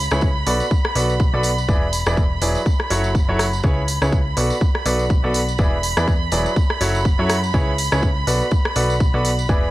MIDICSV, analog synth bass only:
0, 0, Header, 1, 2, 480
1, 0, Start_track
1, 0, Tempo, 487805
1, 1659, Time_signature, 4, 2, 24, 8
1, 9553, End_track
2, 0, Start_track
2, 0, Title_t, "Analog synth bass"
2, 0, Program_c, 0, 38
2, 114, Note_on_c, 0, 37, 95
2, 438, Note_off_c, 0, 37, 0
2, 459, Note_on_c, 0, 35, 98
2, 606, Note_off_c, 0, 35, 0
2, 939, Note_on_c, 0, 35, 97
2, 1287, Note_off_c, 0, 35, 0
2, 1314, Note_on_c, 0, 35, 93
2, 1638, Note_off_c, 0, 35, 0
2, 1659, Note_on_c, 0, 28, 91
2, 2007, Note_off_c, 0, 28, 0
2, 2034, Note_on_c, 0, 28, 98
2, 2358, Note_off_c, 0, 28, 0
2, 2379, Note_on_c, 0, 28, 87
2, 2526, Note_off_c, 0, 28, 0
2, 2859, Note_on_c, 0, 30, 96
2, 3207, Note_off_c, 0, 30, 0
2, 3234, Note_on_c, 0, 30, 91
2, 3558, Note_off_c, 0, 30, 0
2, 3579, Note_on_c, 0, 37, 91
2, 3927, Note_off_c, 0, 37, 0
2, 3954, Note_on_c, 0, 37, 92
2, 4278, Note_off_c, 0, 37, 0
2, 4299, Note_on_c, 0, 35, 87
2, 4446, Note_off_c, 0, 35, 0
2, 4779, Note_on_c, 0, 35, 97
2, 5127, Note_off_c, 0, 35, 0
2, 5154, Note_on_c, 0, 35, 97
2, 5478, Note_off_c, 0, 35, 0
2, 5499, Note_on_c, 0, 28, 89
2, 5847, Note_off_c, 0, 28, 0
2, 5875, Note_on_c, 0, 40, 99
2, 6198, Note_off_c, 0, 40, 0
2, 6219, Note_on_c, 0, 28, 92
2, 6367, Note_off_c, 0, 28, 0
2, 6699, Note_on_c, 0, 30, 98
2, 7048, Note_off_c, 0, 30, 0
2, 7075, Note_on_c, 0, 42, 96
2, 7398, Note_off_c, 0, 42, 0
2, 7419, Note_on_c, 0, 37, 92
2, 7767, Note_off_c, 0, 37, 0
2, 7795, Note_on_c, 0, 37, 100
2, 8118, Note_off_c, 0, 37, 0
2, 8139, Note_on_c, 0, 35, 93
2, 8286, Note_off_c, 0, 35, 0
2, 8619, Note_on_c, 0, 35, 99
2, 8967, Note_off_c, 0, 35, 0
2, 8994, Note_on_c, 0, 35, 98
2, 9318, Note_off_c, 0, 35, 0
2, 9340, Note_on_c, 0, 28, 90
2, 9553, Note_off_c, 0, 28, 0
2, 9553, End_track
0, 0, End_of_file